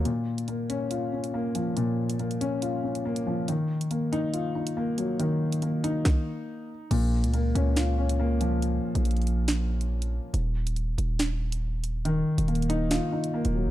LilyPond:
<<
  \new Staff \with { instrumentName = "Grand piano" } { \time 4/4 \key bes \minor \tempo 4 = 140 bes,4 bes8 des'8 f'8 des'8 bes8 f8 | bes,4 bes8 des'8 f'8 des'8 bes8 f8 | ees4 bes8 ees'8 f'8 ees'8 bes8 ges8 | ees4 bes8 ees'2~ ees'8 |
bes,4 bes8 des'8 f'8 des'8 bes8 f8 | r1 | r1 | ees4 bes8 ees'8 f'8 ees'8 bes8 ges8 | }
  \new Staff \with { instrumentName = "808-style bass" } { \clef bass \time 4/4 \key bes \minor r1 | r1 | r1 | r1 |
bes,,8. des,8. des,2~ des,8~ | des,8 r16 bes,,2. r16 | ees,,4. ees,,2~ ees,,8~ | ees,,8 r16 ees,,4. r4 ees,,8 ees,16 | }
  \new DrumStaff \with { instrumentName = "Drums" } \drummode { \time 4/4 hh8. hh16 hh8 hh8 hh8. hh16 r8 hh8 | hh8. hh16 hh16 hh16 hh8 hh8. hh16 r16 hh8. | hh8. hh16 hh8 hh8 hh8. hh16 r8 hh8 | hh8. hh16 hh8 hh8 <bd sn>4 r4 |
<cymc hh>8. hh16 hh8 hh8 <hh sn>8. hh16 r8 hh8 | hh8. hh16 hh32 hh32 hh32 hh32 hh8 <hh sn>8. hh16 r16 hh8. | hh8. hh16 hh8 hh8 <hh sn>8. hh16 r8 hh8 | hh8. hh16 \tuplet 3/2 { hh16 hh16 hh16 hh16 r16 r16 } <hh sn>8. hh16 r16 hh8. | }
>>